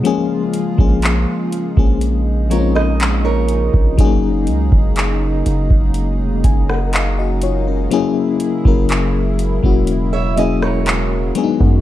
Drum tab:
HH |x-x-x-x-x-x-x-x-|x-x-x-x-x-x-x-x-|x-x-x-x-x-x-x-x-|
CP |----x-------x---|----x-------x---|----x-------x---|
SD |-----------r----|-----------r----|-----------r----|
BD |---o---o-------o|o--o---o--o-----|---o---o-------o|